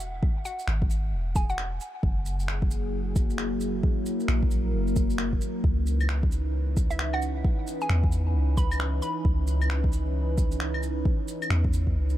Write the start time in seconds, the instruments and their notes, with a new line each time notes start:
Already playing: 808-style bass E1, synth pluck F#5
0.00 shaker
0.23 kick
0.45 synth pluck F#5, shaker
0.59 shaker
0.68 808-style bass G#1, finger snap
0.82 kick
0.90 shaker
1.13 808-style bass E1
1.35 synth pluck G#5, kick, shaker
1.50 synth pluck F#5, shaker
1.58 finger snap
1.80 shaker
2.03 808-style bass F#1, ambient pad F#3 A#3 E4 G#4, kick
2.26 shaker
2.40 shaker
2.48 finger snap
2.62 kick
2.71 shaker
3.16 kick, shaker
3.30 shaker
3.38 finger snap
3.61 shaker
3.83 ambient pad A#4, kick
4.06 shaker
4.20 shaker
4.28 808-style bass A#1, finger snap
4.43 kick
4.51 shaker
4.74 808-style bass F#1
4.87 shaker
4.96 kick, shaker
5.10 shaker
5.18 finger snap
5.33 kick
5.41 shaker
5.64 808-style bass C#2, ambient pad E3 C#4 D#4 B4, kick
5.87 shaker
6.01 claves, shaker
6.09 finger snap
6.23 kick
6.32 shaker
6.77 kick, shaker
6.91 synth pluck E5, shaker
6.99 synth pluck E5, finger snap
7.13 synth pluck F#5, claves
7.22 shaker
7.44 kick
7.67 shaker
7.81 synth pluck G#5, shaker
7.89 808-style bass E2, finger snap
8.04 kick
8.12 shaker
8.34 808-style bass C#2
8.57 synth pluck B5, kick, shaker
8.71 claves, shaker
8.80 finger snap
9.02 synth pluck B5, shaker
9.25 808-style bass C#2, kick
9.47 shaker
9.62 claves, shaker
9.70 finger snap
9.84 kick
9.92 shaker
10.38 kick, shaker
10.52 shaker
10.60 finger snap
10.74 claves
10.83 shaker
11.05 kick
11.28 shaker
11.42 claves, shaker
11.50 808-style bass E2, finger snap
11.65 kick
11.73 shaker
11.87 kick
11.96 808-style bass C#2
12.10 shaker